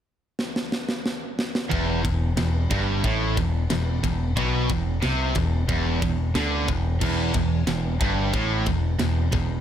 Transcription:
0.39 snare medium
0.56 snare medium
0.72 snare medium
0.89 snare medium
1.06 snare medium
1.39 snare loud
1.55 snare loud
1.71 2.02 E1 medium
1.71 2.03 E2 loud
1.71 kick loud
1.71 ride medium
2.05 2.35 E1 medium
2.05 2.31 E2 medium
2.05 kick medium
2.05 ride medium
2.37 2.68 E1 medium
2.37 2.64 E2 medium
2.37 snare loud
2.37 ride loud
2.71 3.02 G1 medium
2.71 3.03 G2 medium
2.71 kick loud
2.71 ride medium
3.04 3.35 A1 medium
3.04 3.36 A2 loud
3.04 kick medium
3.04 ride medium
3.37 3.68 E1 medium
3.37 3.63 E2 medium
3.37 kick medium
3.37 ride medium
3.70 4.01 E1 medium
3.70 3.97 E2 medium
3.70 snare loud
3.70 ride loud
4.04 4.34 E1 medium
4.04 4.30 E2 medium
4.04 kick medium
4.04 ride medium
4.37 4.67 B1 medium
4.37 4.69 B2 loud
4.37 kick loud
4.37 ride loud
4.69 5.00 E1 medium
4.69 4.96 E2 medium
4.69 kick medium
4.69 ride medium
5.02 5.34 C2 medium
5.02 5.34 C3 loud
5.02 snare loud
5.02 ride medium
5.35 5.67 E1 medium
5.35 5.62 E2 medium
5.35 kick medium
5.35 ride medium
5.69 6.00 E1 medium
5.69 6.01 E2 loud
5.69 kick loud
5.69 ride medium
6.02 6.33 E1 medium
6.02 6.28 E2 medium
6.02 kick medium
6.02 ride medium
6.35 6.66 D2 medium
6.35 6.68 D3 loud
6.35 snare loud
6.35 ride medium
6.68 6.99 E1 medium
6.68 6.95 E2 medium
6.68 kick medium
6.68 ride medium
7.01 7.32 E1 medium
7.01 7.34 E2 loud
7.01 kick loud
7.01 crash loud
7.34 7.65 E1 medium
7.34 7.62 E2 medium
7.34 kick medium
7.34 ride medium
7.67 7.98 E1 medium
7.67 7.95 E2 medium
7.67 snare loud
7.67 ride loud
8.01 8.32 G1 medium
8.01 8.34 G2 medium
8.01 kick loud
8.01 ride medium
8.33 8.65 A1 medium
8.33 8.66 A2 loud
8.33 kick loud
8.33 ride loud
8.66 8.98 E1 medium
8.66 8.94 E2 medium
8.66 kick medium
8.66 ride medium
8.99 9.31 E1 medium
8.99 9.27 E2 medium
8.99 snare loud
8.99 ride loud
9.32 9.61 E1 medium
9.32 9.60 E2 medium
9.32 kick medium
9.32 ride medium

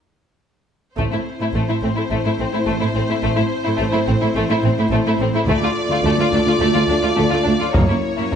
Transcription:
0.97 1.04 A1 soft
0.97 1.03 A2 soft
0.97 1.03 A3 soft
0.97 1.04 A3 soft
0.97 5.43 C4 soft
0.97 5.43 E4 soft
0.97 5.43 C5 soft
0.97 taiko soft
1.12 1.18 A2 soft
1.12 1.18 A3 soft
1.12 1.18 E4 soft
1.40 1.46 A2 soft
1.40 1.46 A3 soft
1.40 1.47 E4 soft
1.54 1.60 A1 soft
1.54 1.61 A2 soft
1.54 1.60 A3 soft
1.54 1.61 A3 soft
1.68 1.75 A2 soft
1.68 1.74 A3 soft
1.68 1.74 E4 soft
1.82 1.88 A1 soft
1.82 1.89 A2 soft
1.82 1.88 A3 soft
1.82 1.89 C4 soft
1.96 2.03 A2 soft
1.96 2.03 A3 soft
1.96 2.02 E4 soft
2.11 2.16 A1 soft
2.11 2.17 A2 soft
2.11 2.17 A3 soft
2.25 2.31 A2 soft
2.25 2.31 A3 soft
2.25 2.31 E4 soft
2.39 2.45 A1 soft
2.39 2.46 A2 soft
2.39 2.44 A3 soft
2.39 2.46 C4 soft
2.53 2.60 A2 soft
2.53 2.58 A3 soft
2.53 2.59 E4 soft
2.65 2.73 A1 medium
2.65 2.74 A2 soft
2.65 2.71 A3 medium
2.65 2.72 A3 soft
2.80 2.88 A2 soft
2.80 2.86 A3 soft
2.80 2.86 E4 soft
2.95 3.00 A1 soft
2.95 3.03 A2 soft
2.95 3.00 A3 soft
2.95 3.01 C4 soft
3.08 3.17 A2 soft
3.08 3.14 A3 soft
3.08 3.15 E4 soft
3.22 3.29 A1 medium
3.22 3.30 A2 medium
3.22 3.28 A3 soft
3.22 3.28 A3 medium
3.36 3.45 A2 soft
3.36 3.43 A3 soft
3.36 3.42 E4 soft
3.64 3.72 A2 soft
3.64 3.71 A3 soft
3.64 3.70 E4 soft
3.77 3.85 A1 medium
3.77 3.86 A2 medium
3.77 3.83 A3 medium
3.77 3.85 A3 medium
3.92 4.00 A2 soft
3.92 4.00 A3 soft
3.92 3.98 E4 soft
4.07 4.13 A1 soft
4.07 4.14 A2 soft
4.07 4.14 A3 soft
4.07 4.12 C4 soft
4.21 4.28 A2 soft
4.21 4.28 A3 soft
4.21 4.27 E4 soft
4.35 4.41 A1 medium
4.35 4.42 A2 medium
4.35 4.41 A3 medium
4.50 4.55 A2 soft
4.50 4.56 A3 soft
4.50 4.55 E4 soft
4.64 4.69 A1 soft
4.64 4.69 A2 soft
4.64 4.70 A3 soft
4.64 4.70 C4 soft
4.78 4.83 A2 medium
4.78 4.84 A3 medium
4.78 4.84 E4 soft
4.91 4.97 A1 medium
4.91 4.97 A2 medium
4.91 4.97 A3 medium
4.91 4.99 A3 medium
5.05 5.11 A2 soft
5.05 5.12 A3 soft
5.05 5.12 E4 soft
5.19 5.25 A1 soft
5.19 5.25 A2 soft
5.19 5.26 A3 soft
5.19 5.26 C4 soft
5.33 5.39 A2 soft
5.33 5.40 A3 soft
5.33 5.40 E4 soft
5.47 5.53 D2 medium
5.47 7.58 A3 medium
5.47 5.53 A3 medium
5.47 5.54 A3 medium
5.47 7.58 F4 medium
5.47 7.71 D5 medium
5.47 taiko medium
5.62 5.67 D2 soft
5.62 5.68 A3 soft
5.62 5.68 F4 soft
5.89 5.95 D2 soft
5.89 5.96 A3 soft
5.89 5.97 F4 soft
6.03 6.09 D2 medium
6.03 6.10 A3 medium
6.17 6.23 D2 soft
6.17 6.25 A3 soft
6.17 6.25 F4 soft
6.32 6.37 D2 soft
6.32 6.38 D2 soft
6.32 6.39 A3 soft
6.32 6.39 D4 soft
6.32 taiko soft
6.46 6.52 D2 soft
6.46 6.53 A3 soft
6.46 6.52 F4 soft
6.59 6.65 D2 medium
6.59 6.66 D2 medium
6.59 6.66 A3 medium
6.59 6.68 A3 medium
6.73 6.80 D2 soft
6.73 6.81 A3 soft
6.73 6.79 F4 soft
6.88 6.94 D2 soft
6.88 6.95 D2 soft
6.88 6.96 A3 soft
6.88 6.94 D4 soft
7.02 7.09 D2 soft
7.02 7.10 A3 soft
7.02 7.08 F4 soft
7.15 7.22 D2 medium
7.15 7.23 D2 medium
7.15 7.21 A3 medium
7.15 7.24 A3 medium
7.30 7.38 D2 soft
7.30 7.38 A3 soft
7.30 7.36 F4 soft
7.43 7.51 D2 soft
7.43 7.52 D2 soft
7.43 7.50 D4 soft
7.48 7.53 A3 soft
7.59 7.67 D2 soft
7.59 7.67 A3 soft
7.59 7.65 F4 soft
7.73 7.80 F#1 soft
7.73 7.81 F#2 soft
7.73 7.79 A#3 soft
7.73 8.35 A#3 soft
7.73 7.81 A#3 soft
7.73 8.35 E4 soft
7.73 8.35 C#5 soft
7.73 taiko medium
7.73 reverse cymbal soft
7.88 7.96 F#2 soft
7.88 7.95 A#3 soft
7.88 7.94 E4 soft
8.17 8.25 F#2 soft
8.17 8.24 A#3 soft
8.17 8.23 E4 soft
8.32 8.35 A#3 soft
8.32 taiko medium

